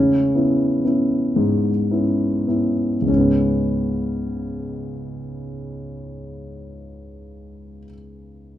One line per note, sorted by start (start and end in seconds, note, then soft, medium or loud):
0.00 3.04 C#3 medium
0.00 0.34 C#4 medium
0.35 0.83 B3 soft
0.35 0.84 C#4 soft
0.35 0.84 E4 soft
0.85 1.70 B3 soft
0.85 1.70 C#4 soft
0.85 1.71 E4 soft
1.36 3.04 G#2 medium
1.91 2.46 B3 soft
1.91 2.46 C#4 soft
1.91 2.47 E4 soft
2.48 2.96 B3 soft
2.48 2.96 C#4 soft
2.48 2.97 E4 soft
3.02 7.78 C#2 soft
3.07 7.84 G#2 soft
3.07 7.84 C#4 medium
3.12 7.89 G#3 soft
3.17 7.94 B3 soft